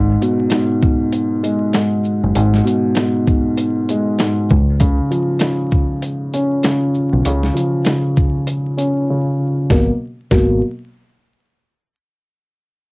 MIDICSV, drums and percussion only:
0, 0, Header, 1, 2, 480
1, 0, Start_track
1, 0, Tempo, 612245
1, 1846, Time_signature, 4, 2, 24, 8
1, 10126, End_track
2, 0, Start_track
2, 0, Title_t, "Drums"
2, 173, Note_on_c, 9, 42, 50
2, 173, Note_on_c, 9, 82, 51
2, 251, Note_off_c, 9, 42, 0
2, 251, Note_off_c, 9, 82, 0
2, 391, Note_on_c, 9, 42, 74
2, 404, Note_on_c, 9, 38, 115
2, 407, Note_on_c, 9, 40, 92
2, 469, Note_off_c, 9, 42, 0
2, 482, Note_off_c, 9, 38, 0
2, 485, Note_off_c, 9, 40, 0
2, 642, Note_on_c, 9, 82, 57
2, 647, Note_on_c, 9, 36, 97
2, 720, Note_off_c, 9, 82, 0
2, 726, Note_off_c, 9, 36, 0
2, 882, Note_on_c, 9, 42, 76
2, 960, Note_off_c, 9, 42, 0
2, 1129, Note_on_c, 9, 42, 55
2, 1129, Note_on_c, 9, 82, 54
2, 1208, Note_off_c, 9, 42, 0
2, 1208, Note_off_c, 9, 82, 0
2, 1359, Note_on_c, 9, 42, 68
2, 1368, Note_on_c, 9, 38, 118
2, 1371, Note_on_c, 9, 40, 96
2, 1437, Note_off_c, 9, 42, 0
2, 1446, Note_off_c, 9, 38, 0
2, 1450, Note_off_c, 9, 40, 0
2, 1603, Note_on_c, 9, 82, 55
2, 1682, Note_off_c, 9, 82, 0
2, 1843, Note_on_c, 9, 42, 107
2, 1922, Note_off_c, 9, 42, 0
2, 1988, Note_on_c, 9, 38, 30
2, 2067, Note_off_c, 9, 38, 0
2, 2093, Note_on_c, 9, 42, 50
2, 2093, Note_on_c, 9, 82, 50
2, 2172, Note_off_c, 9, 42, 0
2, 2172, Note_off_c, 9, 82, 0
2, 2312, Note_on_c, 9, 42, 74
2, 2325, Note_on_c, 9, 38, 119
2, 2328, Note_on_c, 9, 40, 93
2, 2390, Note_off_c, 9, 42, 0
2, 2403, Note_off_c, 9, 38, 0
2, 2407, Note_off_c, 9, 40, 0
2, 2564, Note_on_c, 9, 82, 58
2, 2567, Note_on_c, 9, 36, 94
2, 2642, Note_off_c, 9, 82, 0
2, 2646, Note_off_c, 9, 36, 0
2, 2803, Note_on_c, 9, 42, 78
2, 2881, Note_off_c, 9, 42, 0
2, 3049, Note_on_c, 9, 42, 54
2, 3049, Note_on_c, 9, 82, 54
2, 3127, Note_off_c, 9, 42, 0
2, 3127, Note_off_c, 9, 82, 0
2, 3281, Note_on_c, 9, 42, 69
2, 3290, Note_on_c, 9, 38, 118
2, 3293, Note_on_c, 9, 40, 95
2, 3359, Note_off_c, 9, 42, 0
2, 3368, Note_off_c, 9, 38, 0
2, 3371, Note_off_c, 9, 40, 0
2, 3523, Note_on_c, 9, 82, 55
2, 3531, Note_on_c, 9, 36, 97
2, 3602, Note_off_c, 9, 82, 0
2, 3610, Note_off_c, 9, 36, 0
2, 3761, Note_on_c, 9, 42, 108
2, 3767, Note_on_c, 9, 36, 118
2, 3840, Note_off_c, 9, 42, 0
2, 3845, Note_off_c, 9, 36, 0
2, 4012, Note_on_c, 9, 42, 51
2, 4012, Note_on_c, 9, 82, 51
2, 4090, Note_off_c, 9, 42, 0
2, 4090, Note_off_c, 9, 82, 0
2, 4230, Note_on_c, 9, 42, 76
2, 4243, Note_on_c, 9, 38, 120
2, 4246, Note_on_c, 9, 40, 95
2, 4308, Note_off_c, 9, 42, 0
2, 4321, Note_off_c, 9, 38, 0
2, 4324, Note_off_c, 9, 40, 0
2, 4482, Note_on_c, 9, 82, 58
2, 4487, Note_on_c, 9, 36, 93
2, 4560, Note_off_c, 9, 82, 0
2, 4565, Note_off_c, 9, 36, 0
2, 4723, Note_on_c, 9, 42, 78
2, 4801, Note_off_c, 9, 42, 0
2, 4969, Note_on_c, 9, 42, 55
2, 4969, Note_on_c, 9, 82, 53
2, 5047, Note_off_c, 9, 42, 0
2, 5047, Note_off_c, 9, 82, 0
2, 5200, Note_on_c, 9, 42, 70
2, 5209, Note_on_c, 9, 38, 115
2, 5212, Note_on_c, 9, 40, 97
2, 5279, Note_off_c, 9, 42, 0
2, 5288, Note_off_c, 9, 38, 0
2, 5291, Note_off_c, 9, 40, 0
2, 5445, Note_on_c, 9, 82, 55
2, 5524, Note_off_c, 9, 82, 0
2, 5685, Note_on_c, 9, 42, 106
2, 5763, Note_off_c, 9, 42, 0
2, 5828, Note_on_c, 9, 38, 30
2, 5906, Note_off_c, 9, 38, 0
2, 5933, Note_on_c, 9, 42, 51
2, 5933, Note_on_c, 9, 82, 50
2, 6011, Note_off_c, 9, 42, 0
2, 6011, Note_off_c, 9, 82, 0
2, 6151, Note_on_c, 9, 42, 74
2, 6164, Note_on_c, 9, 38, 120
2, 6167, Note_on_c, 9, 40, 95
2, 6230, Note_off_c, 9, 42, 0
2, 6243, Note_off_c, 9, 38, 0
2, 6246, Note_off_c, 9, 40, 0
2, 6401, Note_on_c, 9, 82, 60
2, 6406, Note_on_c, 9, 36, 95
2, 6480, Note_off_c, 9, 82, 0
2, 6485, Note_off_c, 9, 36, 0
2, 6641, Note_on_c, 9, 42, 79
2, 6719, Note_off_c, 9, 42, 0
2, 6887, Note_on_c, 9, 42, 55
2, 6887, Note_on_c, 9, 82, 56
2, 6966, Note_off_c, 9, 42, 0
2, 6966, Note_off_c, 9, 82, 0
2, 7605, Note_on_c, 9, 36, 108
2, 7606, Note_on_c, 9, 38, 92
2, 7684, Note_off_c, 9, 36, 0
2, 7684, Note_off_c, 9, 38, 0
2, 8085, Note_on_c, 9, 36, 106
2, 8085, Note_on_c, 9, 38, 89
2, 8163, Note_off_c, 9, 36, 0
2, 8163, Note_off_c, 9, 38, 0
2, 10126, End_track
0, 0, End_of_file